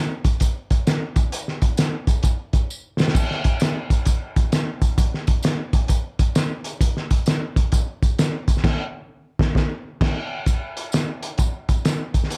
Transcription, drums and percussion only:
0.25 kick loud
0.25 closed hi-hat medium
0.25 tambourine medium
0.40 kick medium
0.40 closed hi-hat medium
0.40 tambourine loud
0.71 kick medium
0.71 closed hi-hat medium
0.71 tambourine medium
0.87 snare loud
0.87 closed hi-hat medium
0.87 tambourine medium
1.16 kick loud
1.16 closed hi-hat medium
1.16 tambourine medium
1.32 closed hi-hat medium
1.32 tambourine medium
1.48 snare soft
1.62 kick medium
1.62 closed hi-hat medium
1.62 tambourine medium
1.77 snare loud
1.77 closed hi-hat medium
1.77 tambourine medium
2.07 kick loud
2.07 closed hi-hat medium
2.07 tambourine medium
2.23 kick medium
2.23 closed hi-hat medium
2.23 tambourine loud
2.53 kick medium
2.53 closed hi-hat medium
2.53 tambourine medium
2.70 tambourine medium
2.99 snare medium
2.99 tambourine medium
3.08 snare medium
3.15 kick loud
3.15 crash medium
3.15 tambourine loud
3.31 snare soft
3.44 kick medium
3.44 closed hi-hat medium
3.44 tambourine medium
3.60 snare loud
3.60 closed hi-hat medium
3.60 tambourine medium
3.90 kick loud
3.90 closed hi-hat medium
3.90 tambourine medium
4.05 kick medium
4.05 closed hi-hat medium
4.05 tambourine loud
4.36 kick loud
4.36 closed hi-hat medium
4.36 tambourine medium
4.52 snare loud
4.52 closed hi-hat medium
4.52 tambourine medium
4.82 kick medium
4.82 closed hi-hat medium
4.82 tambourine medium
4.98 kick loud
4.98 closed hi-hat loud
4.98 tambourine loud
5.14 snare soft
5.27 kick medium
5.27 closed hi-hat medium
5.27 tambourine medium
5.43 snare loud
5.43 closed hi-hat medium
5.43 tambourine medium
5.73 kick loud
5.73 closed hi-hat medium
5.73 tambourine soft
5.88 kick medium
5.88 closed hi-hat medium
5.88 tambourine loud
6.19 kick loud
6.19 closed hi-hat medium
6.19 tambourine medium
6.35 snare loud
6.35 closed hi-hat medium
6.35 tambourine medium
6.64 closed hi-hat medium
6.64 tambourine medium
6.81 kick loud
6.81 closed hi-hat medium
6.81 tambourine loud
6.97 snare soft
7.10 kick medium
7.10 closed hi-hat medium
7.10 tambourine medium
7.26 snare loud
7.26 closed hi-hat medium
7.26 tambourine medium
7.56 kick loud
7.56 closed hi-hat medium
7.56 tambourine soft
7.72 kick loud
7.72 closed hi-hat medium
7.72 tambourine loud
8.03 kick medium
8.03 closed hi-hat medium
8.03 tambourine medium
8.19 snare loud
8.19 closed hi-hat medium
8.19 tambourine medium
8.48 kick medium
8.48 closed hi-hat medium
8.48 tambourine medium
8.57 snare soft
8.64 kick loud
8.64 snare loud
8.64 crash medium
9.39 kick loud
9.39 snare loud
9.55 kick loud
9.55 snare loud
10.01 kick loud
10.01 snare loud
10.01 crash medium
10.46 kick loud
10.46 closed hi-hat medium
10.46 tambourine loud
10.77 closed hi-hat medium
10.77 tambourine medium
10.92 snare medium
10.92 closed hi-hat medium
10.92 tambourine medium
11.23 closed hi-hat medium
11.23 tambourine medium
11.38 kick loud
11.38 closed hi-hat medium
11.38 tambourine loud
11.69 kick medium
11.69 closed hi-hat medium
11.69 tambourine medium
11.85 snare loud
11.85 closed hi-hat medium
11.85 tambourine medium
12.14 kick medium
12.14 closed hi-hat medium
12.14 tambourine medium
12.24 snare soft
12.30 closed hi-hat medium
12.30 tambourine medium

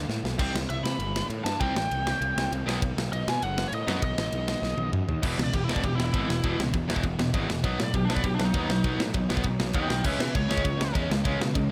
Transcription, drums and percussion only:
0.10 snare medium
0.25 snare medium
0.39 kick loud
0.39 crash loud
0.56 snare loud
0.70 ride medium
0.86 snare loud
1.00 ride medium
1.16 snare loud
1.30 ride medium
1.46 snare loud
1.61 kick loud
1.61 ride medium
1.76 snare loud
1.91 ride medium
2.07 snare loud
2.22 ride medium
2.38 snare loud
2.52 ride medium
2.69 snare loud
2.82 kick loud
2.82 ride medium
2.98 snare loud
3.13 ride medium
3.28 snare loud
3.42 ride medium
3.58 snare loud
3.73 ride medium
3.88 snare loud
4.02 kick loud
4.02 ride medium
4.18 snare loud
4.32 ride medium
4.48 snare loud
4.63 snare medium
4.78 high tom medium
4.93 mid tom loud
5.09 floor tom medium
5.23 kick loud
5.23 crash loud
5.39 snare loud
5.54 kick loud
5.54 ride medium
5.69 snare loud
5.76 kick medium
5.83 kick loud
5.83 ride medium
6.00 snare loud
6.14 kick loud
6.14 ride medium
6.30 snare loud
6.43 kick loud
6.43 ride medium
6.60 snare loud
6.74 kick loud
6.74 ride medium
6.90 snare loud
6.96 kick medium
7.03 kick loud
7.03 ride medium
7.19 snare loud
7.34 kick loud
7.34 ride medium
7.50 snare loud
7.64 kick loud
7.64 ride medium
7.80 snare loud
7.94 kick loud
7.94 ride medium
8.10 snare loud
8.17 kick medium
8.24 kick loud
8.24 ride medium
8.39 snare loud
8.54 kick loud
8.54 ride medium
8.70 snare loud
8.84 kick loud
8.84 ride medium
9.00 snare loud
9.14 kick loud
9.14 ride medium
9.30 snare loud
9.37 kick medium
9.43 kick medium
9.43 ride medium
9.60 snare loud
9.73 kick loud
9.73 ride medium
9.90 snare loud
10.04 kick loud
10.04 crash loud
10.20 snare loud
10.35 kick loud
10.35 ride medium
10.51 snare loud
10.57 kick medium
10.65 kick loud
10.65 ride medium
10.81 snare loud
10.95 kick loud
10.95 ride medium
11.11 snare loud
11.25 kick loud
11.25 ride medium
11.41 snare loud
11.55 kick loud
11.55 ride medium

